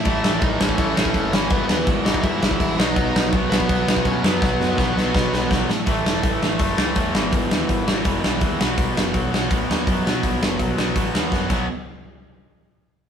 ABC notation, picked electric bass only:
X:1
M:4/4
L:1/8
Q:1/4=165
K:Bmix
V:1 name="Picked electric bass" clef=bass
A,,, A,,, A,,, A,,, A,,, A,,, F,,, G,,, | G,,, D,, G,,, G,,, G,, G,,, A,,, B,,, | B,,, B,,, B,,, B,,, B,,, z B,, F,, | B,,, F,, B,,, B,,, B,, B,,, B,,, A,, |
A,,, E,,, A,,, A,,, F,,, C,, E,, G,,, | G,,, D,, G,,, G,,, F,,, B,,, D,, B,,, | B,,, F,,, B,,, B,,, A,,, D,, F,, B,, | B,,, F,,, B,,, B,,, A,,, D,, F,, B,,, |
z8 |]